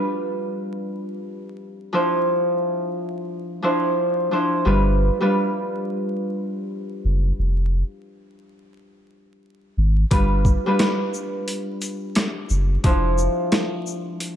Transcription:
Already playing: G3 D4 F4 B4
1.92 F3 D4 E4 C5
3.62 F3 D4 E4 C5
4.31 F3 D4 E4 C5
4.65 G1 G3 D4 F4 B4
5.21 G3 D4 F4 B4
7.05 F#1
7.39 F1
9.77 G#1
10.11 G1 G3 D4 F4 B4, kick, closed hi-hat
10.45 kick, shaker
10.66 G3 D4 F4 B4
10.79 cross-stick, snare, closed hi-hat
11.14 shaker
11.48 closed hi-hat
11.82 closed hi-hat, shaker
12.15 cross-stick, snare, closed hi-hat
12.49 F#1, shaker
12.83 F1 F3 D4 E4 C5, kick, closed hi-hat
13.18 shaker
13.52 cross-stick, snare, closed hi-hat
13.87 shaker
14.20 closed hi-hat

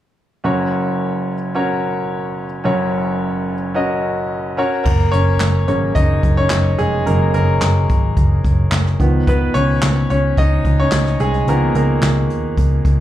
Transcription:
0.44 F#1 F#2 C#4 F#4 A#4 C#5
1.55 C#4 F#4 A#4 C#5
2.64 F#1 F#2 C#4 F#4 A#4 C#5
3.74 C#4 F#4 A#4 D#5
4.57 C#4 F#4 A#4 C#5
4.84 F#1 A#3 A#4, kick, crash
5.00 closed hi-hat
5.12 F#1 C#4 C#5, closed hi-hat
5.40 F#1, snare, clap, closed hi-hat
5.68 G#1 C#3 F#3 A#3 C#4 C#5, closed hi-hat
5.95 F#1 D#4 D#5, kick, closed hi-hat
6.23 F#1, kick, closed hi-hat
6.37 C#4 C#5
6.50 F#1, snare, clap, closed hi-hat
6.79 F1 G#3 G#4, closed hi-hat
7.06 F#1 C#3 F#3 A#3 A#4, closed hi-hat
7.34 F#1 A#3 A#4, closed hi-hat
7.62 F#1, snare, clap, closed hi-hat
7.89 G#1, kick, closed hi-hat
8.17 F#1, kick, closed hi-hat
8.44 F#1, kick, closed hi-hat
8.72 F#1, snare, clap, closed hi-hat
8.87 snare
8.99 C#2 D#3 F3 B3, kick, closed hi-hat
9.27 B3 B4, kick, closed hi-hat
9.54 C#2 C#4 C#5, closed hi-hat
9.82 C#2, snare, clap, closed hi-hat
10.10 C#2 C#4 C#5, closed hi-hat
10.37 C#2 D#4 D#5, kick, closed hi-hat
10.65 C#2, kick, closed hi-hat
10.80 C#4 C#5
10.92 C#2, snare, clap, closed hi-hat
11.06 snare
11.19 C2 G#3 G#4, closed hi-hat
11.34 closed hi-hat
11.47 C#2 D#3 F3 A#3 B3 A#4, closed hi-hat
11.75 C#2 A#3 A#4, closed hi-hat
12.02 C#2, snare, clap, closed hi-hat
12.29 D#2, closed hi-hat
12.57 C#2, kick, closed hi-hat
12.85 C#2, kick, closed hi-hat

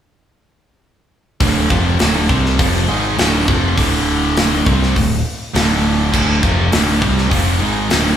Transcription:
1.40 D1 D2 A2 D3, kick, open hi-hat
1.70 F1 F2 C3 F3, kick
1.98 D1 D2 A2 D3, snare, open hi-hat
2.28 C2 C3 G3 C4, kick
2.46 snare
2.58 F1 F2 C3 F3, kick, open hi-hat
2.88 G#1 G#2 D#3 G#3
3.18 D1 D2 A2 D3, snare, open hi-hat
3.46 F1 F2 C3 F3, kick
3.77 D1 D2 A2 D3, kick, open hi-hat
4.37 snare, open hi-hat
4.66 C2 C3 G3 C4, kick
4.83 snare
4.96 D1 D2 A2, kick, open hi-hat
5.54 D1 D2 A2 D3, snare, open hi-hat
6.13 D1 D2 A2 D3, kick, crash
6.42 F1 F2 C3 F3, kick
6.71 D1 D2 A2 D3, snare, open hi-hat
7.00 C2 C3 G3 C4, kick
7.18 snare
7.29 F1 F2 C3 F3, kick, open hi-hat
7.59 G#1 G#2 D#3 G#3
7.89 D1 D2 A2 D3, snare, open hi-hat

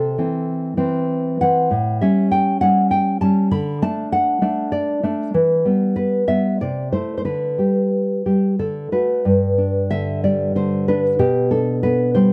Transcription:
Already playing: C3 A4
0.18 E3 C4
0.77 E3 C4
1.41 E3 C4 F#5
1.71 A2
2.01 G3 C#4 E5
2.31 G5
2.61 G3 C#4 F#5
2.91 G5
3.21 G3 C#4 A5
3.51 D3 B5
3.82 A3 D4 A5
4.12 F#5
4.42 A3 D4
4.72 D5
5.03 A3 D4
5.34 E3
5.65 G3 B3
5.96 B4
6.27 G3 B3 E5
6.61 C3 D5
6.92 A3 E4 C5
7.18 C5
7.25 D3 B4
7.58 G3 G4
8.26 G3 G4
8.59 D3 A4
8.92 A3 F#4 B4
9.25 G2
9.58 D4
9.91 D3 E5
10.24 G3 D5
10.55 D3 C5
10.88 D4 B4
11.19 B2 G4
11.51 D4 A4
11.83 B3 B4
12.15 G3 C5

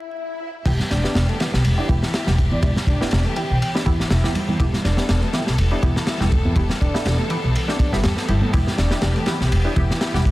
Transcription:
Already playing: swell
0.66 E1 E3 G3 B3 E4 G4, kick, crash, ride
0.80 snare, low conga
0.91 E1 D4, snare, ride
1.04 B3 E4 G4, snare
1.15 E1, snare, ride, high conga
1.29 A3, ride
1.40 E3 B3 E4 G4, snare, ride
1.54 B1, snare
1.64 E1, ride
1.78 B3 D4 E4 G4
1.89 E1 E3 B3 E4 G4, kick, ride, high conga
2.03 snare
2.14 E4, snare, ride
2.27 E1 B3 E4 G4, snare, low conga
2.38 kick, ride
2.51 E2 E3 D5, high conga
2.63 E1 E3 B3 E4 G4 D5, kick, ride
2.76 snare, low conga
2.87 E1 D4, kick, ride
3.01 B3 E4 G4, muted upright bass stroke, snare
3.11 E1, snare, ride, high conga
3.26 A3
3.36 E3 B3 E4 G4, ride
3.50 B1 G5
3.61 G5, ride
3.74 B3 D4 E4 G4, snare
3.86 E2 E3 B3 E4 G4, kick, ride, high conga
4.00 muted upright bass stroke, snare
4.10 E1 E4, snare, ride
4.24 E2 B3 E4 G4, snare
4.35 ride, low conga
4.48 E3, high conga, low conga
4.60 E1 E3 B3 E4 G4 A4, kick, ride
4.74 snare, low conga
4.85 E1 D4, snare, ride
4.97 B3 E4 G4, snare
5.09 E1, snare, ride, high conga
5.22 A3, ride
5.33 E3 B3 E4 G4, snare, ride
5.47 B1, snare
5.58 E1, ride
5.71 B3 D4 E4 G4
5.83 E1 E3 B3 E4 G4, kick, ride, high conga
5.96 snare
6.07 E4, snare, ride
6.20 E1 B3 E4 G4, snare, low conga
6.32 kick, ride
6.45 E2 E3, high conga
6.56 E1 E3 B3 E4 G4, kick, ride
6.69 snare, low conga
6.81 E1 D4, kick, ride
6.94 B3 E4 G4, muted upright bass stroke, snare
7.05 E1, snare, ride, high conga
7.19 A3
7.30 E3 B3 E4 G4, ride
7.44 B1
7.55 ride
7.68 B3 D4 E4 G4, snare
7.79 D4, kick, ride, high conga
7.93 G1 B3 E4 G4, snare
8.04 E2 G3, snare, ride
8.17 snare
8.28 G1 B3 E4 G4, ride, low conga
8.41 A3, high conga, low conga
8.53 E1 E3 B3 E4 G4, kick, ride
8.67 snare, low conga
8.78 E1 D4, snare, ride
8.91 B3 E4 G4, snare
9.02 E1, snare, ride, high conga
9.16 A3, ride
9.26 E3 B3 E4 G4, snare, ride
9.40 B1, snare
9.52 E1, ride
9.65 B3 D4 E4 G4
9.76 E1 E3 B3 E4 G4, kick, ride, high conga
9.91 snare
10.01 E4, snare, ride
10.14 E1 B3 E4 G4, snare, low conga
10.25 kick, ride

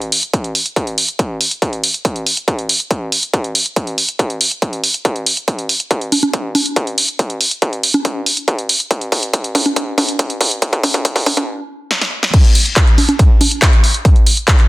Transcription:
0.02 closed hi-hat
0.12 open hi-hat
0.23 closed hi-hat
0.34 kick, closed hi-hat
0.44 closed hi-hat
0.55 open hi-hat
0.66 closed hi-hat
0.76 kick, closed hi-hat
0.87 closed hi-hat
0.98 open hi-hat
1.08 closed hi-hat
1.19 kick, closed hi-hat
1.41 open hi-hat
1.51 closed hi-hat
1.62 kick, closed hi-hat
1.73 closed hi-hat
1.84 open hi-hat
1.94 closed hi-hat
2.05 kick, closed hi-hat
2.16 closed hi-hat
2.26 open hi-hat
2.37 closed hi-hat
2.48 kick, closed hi-hat
2.59 closed hi-hat
2.69 open hi-hat
2.80 closed hi-hat
2.91 kick, closed hi-hat
3.12 open hi-hat
3.23 closed hi-hat
3.34 kick, closed hi-hat
3.44 closed hi-hat
3.55 open hi-hat
3.66 closed hi-hat
3.76 kick, closed hi-hat
3.87 closed hi-hat
3.98 open hi-hat
4.09 closed hi-hat
4.19 kick, closed hi-hat
4.30 closed hi-hat
4.41 open hi-hat
4.51 closed hi-hat
4.62 kick, closed hi-hat
4.73 closed hi-hat
4.84 open hi-hat
4.94 closed hi-hat
5.05 kick, closed hi-hat
5.16 closed hi-hat
5.26 open hi-hat
5.37 closed hi-hat
5.48 kick, closed hi-hat
5.59 closed hi-hat
5.69 open hi-hat
5.80 closed hi-hat
5.91 kick, closed hi-hat
6.01 closed hi-hat
6.12 open hi-hat, high conga
6.23 closed hi-hat, high conga
6.34 kick, closed hi-hat
6.55 open hi-hat, high conga
6.66 closed hi-hat
6.76 kick, closed hi-hat
6.87 closed hi-hat
6.98 open hi-hat
7.08 closed hi-hat
7.19 kick, closed hi-hat
7.30 closed hi-hat
7.41 open hi-hat
7.51 closed hi-hat
7.62 kick, closed hi-hat
7.73 closed hi-hat
7.83 open hi-hat
7.94 closed hi-hat, high conga
8.05 kick, closed hi-hat
8.26 open hi-hat
8.37 closed hi-hat
8.48 kick, closed hi-hat
8.59 closed hi-hat
8.69 open hi-hat
8.80 closed hi-hat
8.91 kick, closed hi-hat
9.01 closed hi-hat
9.12 kick, open hi-hat
9.23 closed hi-hat
9.34 kick, closed hi-hat
9.44 closed hi-hat
9.55 kick, open hi-hat, high conga
9.66 closed hi-hat, high conga
9.76 kick, closed hi-hat
9.98 kick, open hi-hat, high conga
10.09 closed hi-hat
10.19 kick, closed hi-hat
10.30 closed hi-hat
10.41 kick, open hi-hat
10.51 closed hi-hat
10.62 kick, closed hi-hat
10.73 kick, closed hi-hat
10.84 kick, open hi-hat, high conga
10.94 kick, closed hi-hat
11.05 kick, closed hi-hat
11.16 kick, open hi-hat
11.26 kick, open hi-hat, high conga
11.37 kick, closed hi-hat, high conga
11.91 snare
12.01 snare
12.23 snare
12.34 kick, closed hi-hat, crash
12.44 closed hi-hat
12.55 open hi-hat
12.66 closed hi-hat
12.76 kick, clap, closed hi-hat
12.87 closed hi-hat
12.98 open hi-hat, high conga
13.09 closed hi-hat, high conga
13.19 kick, closed hi-hat
13.41 open hi-hat, high conga
13.51 closed hi-hat
13.62 kick, clap, closed hi-hat
13.73 closed hi-hat
13.84 open hi-hat
13.94 closed hi-hat
14.05 kick, closed hi-hat
14.16 closed hi-hat
14.26 open hi-hat
14.37 closed hi-hat
14.48 kick, clap, closed hi-hat
14.59 clap, closed hi-hat

